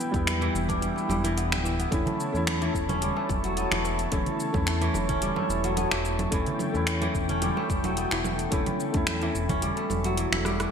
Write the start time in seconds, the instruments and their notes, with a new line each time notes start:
Already playing: kora E3 F#3 G3 A3 B3 D4, felt piano B3 E4, analog synth pad E4 B4 G5
0.00 shaker
0.11 analog synth bass E2, felt piano G3 B3, kick, closed hi-hat, shaker
0.16 felt piano E4
0.27 finger snap, closed hi-hat, low conga, shaker
0.41 kora E3, closed hi-hat
0.55 analog synth bass E1, shaker
0.69 kora D4, kick, closed hi-hat, low conga, shaker
0.81 kora G3, closed hi-hat, shaker
0.96 kora A3, shaker
1.09 analog synth bass E1, kora G3, low conga, shaker
1.24 kora E3, closed hi-hat, shaker
1.37 kora B3, closed hi-hat, shaker
1.51 analog synth bass D1, finger snap, closed hi-hat, low conga, shaker
1.64 kora E3, shaker
1.79 kora B3, closed hi-hat, shaker
1.91 analog synth bass E1, kora E3, felt piano A3 C#4 E4, synth texture A3 A4, analog synth pad C#5 A5, kick, closed hi-hat, shaker
2.06 closed hi-hat, darbuka dum, low conga
2.20 shaker
2.32 analog synth bass E2, felt piano A3 C#4 E4, shaker
2.47 finger snap, closed hi-hat, low conga, shaker
2.61 kora E3, closed hi-hat
2.75 analog synth bass E1, kick, shaker
2.89 kora C#4, closed hi-hat, darbuka dum, low conga, shaker
3.01 kora G3, closed hi-hat, shaker
3.16 kora A3, darbuka ka, darbuka tek
3.29 analog synth bass E1, kick, low conga, shaker
3.44 kora F#3, closed hi-hat, shaker
3.57 kora B3, closed hi-hat, shaker
3.72 analog synth bass E1, kora E3, finger snap, low conga, shaker
3.84 darbuka ka, darbuka tek, shaker
3.99 closed hi-hat, shaker
4.12 analog synth bass E1, kora E3, felt piano A3 C#4 E4, kick, closed hi-hat, low conga, shaker
4.26 closed hi-hat, darbuka dum
4.40 shaker
4.53 analog synth bass E2, felt piano A3 C#4, kick, low conga, shaker
4.57 felt piano E4
4.67 finger snap, closed hi-hat, shaker
4.81 kora E3, closed hi-hat
4.94 analog synth bass E1, low conga, shaker
5.09 kora C#4, kick, closed hi-hat, darbuka dum, shaker
5.22 kora G3, closed hi-hat, shaker
5.36 kora A3, darbuka ka, low conga
5.49 analog synth bass E1, shaker
5.64 kora F#3, closed hi-hat, darbuka ka, shaker
5.76 kora B3, closed hi-hat, low conga, shaker
5.91 analog synth bass E1, kora E3, finger snap, shaker
6.05 shaker
6.19 closed hi-hat, low conga, shaker
6.31 analog synth bass E1, kora E3, felt piano A3 C#4 E4, analog synth pad G5, kick, closed hi-hat, shaker
6.46 closed hi-hat, darbuka dum
6.59 low conga, shaker
6.72 analog synth bass E2, felt piano A3 C#4 E4, shaker
6.87 finger snap, closed hi-hat, shaker
7.02 kora E3, closed hi-hat, low conga
7.15 analog synth bass E1, kick, shaker
7.29 kora C#4, closed hi-hat, darbuka dum, shaker
7.42 kora G3, closed hi-hat, low conga, shaker
7.57 kora A3, darbuka ka, darbuka tek
7.70 analog synth bass E1, kick, shaker
7.84 kora F#3, closed hi-hat, low conga, shaker
7.97 kora B3, closed hi-hat, shaker
8.11 analog synth bass E1, kora E3, finger snap, shaker
8.24 darbuka ka, darbuka tek, low conga, shaker
8.39 closed hi-hat, shaker
8.51 analog synth bass E1, kora E3, felt piano A3 C#4 E4, kick, closed hi-hat, shaker
8.66 closed hi-hat, darbuka tek, low conga, darbuka dum
8.80 shaker
8.92 analog synth bass E2, felt piano A3 C#4, kick, closed hi-hat, shaker
8.96 felt piano E4
9.07 finger snap, closed hi-hat, low conga, shaker
9.22 kora E3, closed hi-hat, darbuka tek
9.35 analog synth bass E1, shaker
9.49 kora C#4, kick, closed hi-hat, darbuka tek, darbuka dum, low conga, shaker
9.62 kora G3, closed hi-hat, shaker
9.77 kora A3, closed hi-hat, darbuka ka
9.90 analog synth bass E1, low conga, shaker
10.04 kora F#3, closed hi-hat, darbuka ka, shaker
10.17 kora E3, closed hi-hat, shaker
10.32 analog synth bass E1, kora E4, finger snap, low conga, shaker
10.45 kora G3, cross-stick, shaker
10.60 kora E3, cross-stick, closed hi-hat, shaker